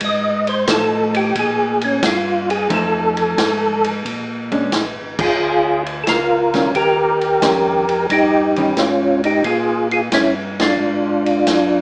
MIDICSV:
0, 0, Header, 1, 5, 480
1, 0, Start_track
1, 0, Tempo, 674157
1, 965, Time_signature, 4, 2, 24, 8
1, 8410, End_track
2, 0, Start_track
2, 0, Title_t, "Tonewheel organ"
2, 0, Program_c, 0, 16
2, 30, Note_on_c, 0, 75, 92
2, 339, Note_off_c, 0, 75, 0
2, 347, Note_on_c, 0, 72, 91
2, 486, Note_off_c, 0, 72, 0
2, 506, Note_on_c, 0, 69, 89
2, 817, Note_off_c, 0, 69, 0
2, 830, Note_on_c, 0, 67, 89
2, 967, Note_off_c, 0, 67, 0
2, 991, Note_on_c, 0, 68, 91
2, 1299, Note_off_c, 0, 68, 0
2, 1313, Note_on_c, 0, 61, 70
2, 1449, Note_off_c, 0, 61, 0
2, 1466, Note_on_c, 0, 65, 73
2, 1777, Note_off_c, 0, 65, 0
2, 1786, Note_on_c, 0, 68, 95
2, 1925, Note_off_c, 0, 68, 0
2, 1947, Note_on_c, 0, 69, 90
2, 2792, Note_off_c, 0, 69, 0
2, 3705, Note_on_c, 0, 68, 88
2, 3710, Note_on_c, 0, 65, 74
2, 4151, Note_off_c, 0, 68, 0
2, 4154, Note_off_c, 0, 65, 0
2, 4298, Note_on_c, 0, 69, 71
2, 4327, Note_off_c, 0, 69, 0
2, 4335, Note_on_c, 0, 70, 89
2, 4336, Note_on_c, 0, 65, 70
2, 4781, Note_off_c, 0, 70, 0
2, 4782, Note_off_c, 0, 65, 0
2, 4812, Note_on_c, 0, 67, 73
2, 4820, Note_on_c, 0, 70, 99
2, 5740, Note_off_c, 0, 67, 0
2, 5744, Note_off_c, 0, 70, 0
2, 5778, Note_on_c, 0, 63, 69
2, 5788, Note_on_c, 0, 67, 89
2, 6223, Note_off_c, 0, 63, 0
2, 6255, Note_on_c, 0, 61, 61
2, 6260, Note_on_c, 0, 65, 77
2, 6271, Note_off_c, 0, 67, 0
2, 6558, Note_off_c, 0, 61, 0
2, 6561, Note_off_c, 0, 65, 0
2, 6586, Note_on_c, 0, 63, 59
2, 6595, Note_on_c, 0, 67, 78
2, 6720, Note_off_c, 0, 63, 0
2, 6725, Note_off_c, 0, 67, 0
2, 6727, Note_on_c, 0, 65, 68
2, 6735, Note_on_c, 0, 68, 91
2, 7034, Note_off_c, 0, 65, 0
2, 7038, Note_off_c, 0, 68, 0
2, 7064, Note_on_c, 0, 65, 60
2, 7073, Note_on_c, 0, 68, 75
2, 7129, Note_off_c, 0, 65, 0
2, 7136, Note_off_c, 0, 68, 0
2, 7219, Note_on_c, 0, 61, 56
2, 7223, Note_on_c, 0, 64, 67
2, 7365, Note_off_c, 0, 61, 0
2, 7368, Note_off_c, 0, 64, 0
2, 7554, Note_on_c, 0, 62, 55
2, 7560, Note_on_c, 0, 65, 70
2, 8410, Note_off_c, 0, 62, 0
2, 8410, Note_off_c, 0, 65, 0
2, 8410, End_track
3, 0, Start_track
3, 0, Title_t, "Hollow-body jazz guitar"
3, 0, Program_c, 1, 26
3, 487, Note_on_c, 1, 53, 61
3, 487, Note_on_c, 1, 57, 62
3, 494, Note_on_c, 1, 63, 64
3, 966, Note_off_c, 1, 53, 0
3, 966, Note_off_c, 1, 57, 0
3, 969, Note_off_c, 1, 63, 0
3, 1921, Note_on_c, 1, 53, 72
3, 1923, Note_on_c, 1, 57, 73
3, 1925, Note_on_c, 1, 63, 75
3, 2667, Note_off_c, 1, 53, 0
3, 2668, Note_off_c, 1, 57, 0
3, 2669, Note_off_c, 1, 63, 0
3, 3216, Note_on_c, 1, 56, 53
3, 3220, Note_on_c, 1, 61, 57
3, 3221, Note_on_c, 1, 62, 67
3, 3349, Note_off_c, 1, 56, 0
3, 3351, Note_off_c, 1, 61, 0
3, 3352, Note_off_c, 1, 62, 0
3, 4656, Note_on_c, 1, 51, 55
3, 4659, Note_on_c, 1, 55, 61
3, 4661, Note_on_c, 1, 61, 68
3, 4789, Note_off_c, 1, 51, 0
3, 4791, Note_off_c, 1, 55, 0
3, 4792, Note_off_c, 1, 61, 0
3, 5282, Note_on_c, 1, 51, 51
3, 5285, Note_on_c, 1, 55, 54
3, 5288, Note_on_c, 1, 61, 55
3, 5581, Note_off_c, 1, 51, 0
3, 5583, Note_off_c, 1, 55, 0
3, 5584, Note_off_c, 1, 61, 0
3, 6102, Note_on_c, 1, 51, 57
3, 6108, Note_on_c, 1, 55, 62
3, 6111, Note_on_c, 1, 61, 61
3, 6233, Note_off_c, 1, 51, 0
3, 6236, Note_off_c, 1, 55, 0
3, 6237, Note_off_c, 1, 61, 0
3, 8410, End_track
4, 0, Start_track
4, 0, Title_t, "Tonewheel organ"
4, 0, Program_c, 2, 16
4, 5, Note_on_c, 2, 44, 90
4, 470, Note_off_c, 2, 44, 0
4, 482, Note_on_c, 2, 45, 96
4, 949, Note_off_c, 2, 45, 0
4, 961, Note_on_c, 2, 46, 82
4, 1428, Note_off_c, 2, 46, 0
4, 1441, Note_on_c, 2, 43, 90
4, 1908, Note_off_c, 2, 43, 0
4, 1923, Note_on_c, 2, 41, 88
4, 2389, Note_off_c, 2, 41, 0
4, 2404, Note_on_c, 2, 44, 93
4, 2869, Note_off_c, 2, 44, 0
4, 2884, Note_on_c, 2, 46, 71
4, 3349, Note_off_c, 2, 46, 0
4, 3363, Note_on_c, 2, 34, 80
4, 3518, Note_off_c, 2, 34, 0
4, 3521, Note_on_c, 2, 32, 49
4, 3682, Note_off_c, 2, 32, 0
4, 3685, Note_on_c, 2, 29, 62
4, 3833, Note_off_c, 2, 29, 0
4, 3839, Note_on_c, 2, 38, 80
4, 4307, Note_off_c, 2, 38, 0
4, 4320, Note_on_c, 2, 37, 81
4, 4788, Note_off_c, 2, 37, 0
4, 4800, Note_on_c, 2, 39, 72
4, 5268, Note_off_c, 2, 39, 0
4, 5284, Note_on_c, 2, 41, 79
4, 5750, Note_off_c, 2, 41, 0
4, 5763, Note_on_c, 2, 43, 80
4, 6230, Note_off_c, 2, 43, 0
4, 6242, Note_on_c, 2, 44, 80
4, 6709, Note_off_c, 2, 44, 0
4, 6724, Note_on_c, 2, 46, 75
4, 7190, Note_off_c, 2, 46, 0
4, 7206, Note_on_c, 2, 43, 81
4, 7671, Note_off_c, 2, 43, 0
4, 7686, Note_on_c, 2, 44, 78
4, 8151, Note_off_c, 2, 44, 0
4, 8165, Note_on_c, 2, 42, 77
4, 8410, Note_off_c, 2, 42, 0
4, 8410, End_track
5, 0, Start_track
5, 0, Title_t, "Drums"
5, 3, Note_on_c, 9, 51, 63
5, 4, Note_on_c, 9, 36, 23
5, 74, Note_off_c, 9, 51, 0
5, 75, Note_off_c, 9, 36, 0
5, 335, Note_on_c, 9, 51, 46
5, 406, Note_off_c, 9, 51, 0
5, 480, Note_on_c, 9, 44, 64
5, 480, Note_on_c, 9, 51, 72
5, 481, Note_on_c, 9, 38, 77
5, 482, Note_on_c, 9, 36, 23
5, 551, Note_off_c, 9, 44, 0
5, 551, Note_off_c, 9, 51, 0
5, 552, Note_off_c, 9, 38, 0
5, 554, Note_off_c, 9, 36, 0
5, 814, Note_on_c, 9, 51, 52
5, 886, Note_off_c, 9, 51, 0
5, 963, Note_on_c, 9, 36, 23
5, 964, Note_on_c, 9, 51, 68
5, 1034, Note_off_c, 9, 36, 0
5, 1035, Note_off_c, 9, 51, 0
5, 1291, Note_on_c, 9, 51, 49
5, 1362, Note_off_c, 9, 51, 0
5, 1442, Note_on_c, 9, 36, 23
5, 1442, Note_on_c, 9, 44, 64
5, 1442, Note_on_c, 9, 51, 75
5, 1443, Note_on_c, 9, 38, 80
5, 1513, Note_off_c, 9, 44, 0
5, 1513, Note_off_c, 9, 51, 0
5, 1514, Note_off_c, 9, 36, 0
5, 1514, Note_off_c, 9, 38, 0
5, 1780, Note_on_c, 9, 51, 54
5, 1851, Note_off_c, 9, 51, 0
5, 1923, Note_on_c, 9, 36, 21
5, 1923, Note_on_c, 9, 51, 67
5, 1994, Note_off_c, 9, 36, 0
5, 1994, Note_off_c, 9, 51, 0
5, 2256, Note_on_c, 9, 51, 49
5, 2327, Note_off_c, 9, 51, 0
5, 2404, Note_on_c, 9, 36, 25
5, 2407, Note_on_c, 9, 38, 79
5, 2407, Note_on_c, 9, 44, 62
5, 2407, Note_on_c, 9, 51, 73
5, 2475, Note_off_c, 9, 36, 0
5, 2478, Note_off_c, 9, 44, 0
5, 2478, Note_off_c, 9, 51, 0
5, 2479, Note_off_c, 9, 38, 0
5, 2736, Note_on_c, 9, 51, 50
5, 2807, Note_off_c, 9, 51, 0
5, 2884, Note_on_c, 9, 36, 23
5, 2887, Note_on_c, 9, 51, 55
5, 2956, Note_off_c, 9, 36, 0
5, 2958, Note_off_c, 9, 51, 0
5, 3215, Note_on_c, 9, 51, 42
5, 3286, Note_off_c, 9, 51, 0
5, 3361, Note_on_c, 9, 38, 65
5, 3361, Note_on_c, 9, 44, 50
5, 3361, Note_on_c, 9, 51, 64
5, 3362, Note_on_c, 9, 36, 21
5, 3432, Note_off_c, 9, 44, 0
5, 3432, Note_off_c, 9, 51, 0
5, 3433, Note_off_c, 9, 36, 0
5, 3433, Note_off_c, 9, 38, 0
5, 3693, Note_on_c, 9, 49, 76
5, 3694, Note_on_c, 9, 36, 78
5, 3764, Note_off_c, 9, 49, 0
5, 3765, Note_off_c, 9, 36, 0
5, 4175, Note_on_c, 9, 51, 43
5, 4246, Note_off_c, 9, 51, 0
5, 4321, Note_on_c, 9, 44, 47
5, 4321, Note_on_c, 9, 51, 60
5, 4322, Note_on_c, 9, 36, 15
5, 4322, Note_on_c, 9, 38, 63
5, 4392, Note_off_c, 9, 44, 0
5, 4392, Note_off_c, 9, 51, 0
5, 4393, Note_off_c, 9, 36, 0
5, 4393, Note_off_c, 9, 38, 0
5, 4653, Note_on_c, 9, 51, 44
5, 4654, Note_on_c, 9, 38, 35
5, 4725, Note_off_c, 9, 38, 0
5, 4725, Note_off_c, 9, 51, 0
5, 4803, Note_on_c, 9, 36, 17
5, 4804, Note_on_c, 9, 51, 56
5, 4875, Note_off_c, 9, 36, 0
5, 4875, Note_off_c, 9, 51, 0
5, 5135, Note_on_c, 9, 51, 42
5, 5206, Note_off_c, 9, 51, 0
5, 5282, Note_on_c, 9, 44, 61
5, 5282, Note_on_c, 9, 51, 63
5, 5283, Note_on_c, 9, 38, 67
5, 5284, Note_on_c, 9, 36, 25
5, 5354, Note_off_c, 9, 38, 0
5, 5354, Note_off_c, 9, 44, 0
5, 5354, Note_off_c, 9, 51, 0
5, 5355, Note_off_c, 9, 36, 0
5, 5615, Note_on_c, 9, 51, 46
5, 5686, Note_off_c, 9, 51, 0
5, 5763, Note_on_c, 9, 36, 23
5, 5767, Note_on_c, 9, 51, 58
5, 5835, Note_off_c, 9, 36, 0
5, 5838, Note_off_c, 9, 51, 0
5, 6096, Note_on_c, 9, 51, 42
5, 6167, Note_off_c, 9, 51, 0
5, 6242, Note_on_c, 9, 38, 64
5, 6242, Note_on_c, 9, 44, 46
5, 6242, Note_on_c, 9, 51, 59
5, 6243, Note_on_c, 9, 36, 20
5, 6313, Note_off_c, 9, 44, 0
5, 6313, Note_off_c, 9, 51, 0
5, 6314, Note_off_c, 9, 36, 0
5, 6314, Note_off_c, 9, 38, 0
5, 6576, Note_on_c, 9, 51, 46
5, 6647, Note_off_c, 9, 51, 0
5, 6722, Note_on_c, 9, 51, 53
5, 6724, Note_on_c, 9, 36, 24
5, 6793, Note_off_c, 9, 51, 0
5, 6795, Note_off_c, 9, 36, 0
5, 7057, Note_on_c, 9, 51, 43
5, 7128, Note_off_c, 9, 51, 0
5, 7203, Note_on_c, 9, 44, 48
5, 7203, Note_on_c, 9, 51, 67
5, 7204, Note_on_c, 9, 38, 68
5, 7205, Note_on_c, 9, 36, 23
5, 7275, Note_off_c, 9, 38, 0
5, 7275, Note_off_c, 9, 44, 0
5, 7275, Note_off_c, 9, 51, 0
5, 7276, Note_off_c, 9, 36, 0
5, 7543, Note_on_c, 9, 51, 64
5, 7544, Note_on_c, 9, 38, 79
5, 7615, Note_off_c, 9, 38, 0
5, 7615, Note_off_c, 9, 51, 0
5, 8018, Note_on_c, 9, 51, 41
5, 8090, Note_off_c, 9, 51, 0
5, 8164, Note_on_c, 9, 44, 53
5, 8164, Note_on_c, 9, 51, 64
5, 8165, Note_on_c, 9, 36, 21
5, 8165, Note_on_c, 9, 38, 64
5, 8235, Note_off_c, 9, 44, 0
5, 8235, Note_off_c, 9, 51, 0
5, 8236, Note_off_c, 9, 36, 0
5, 8236, Note_off_c, 9, 38, 0
5, 8410, End_track
0, 0, End_of_file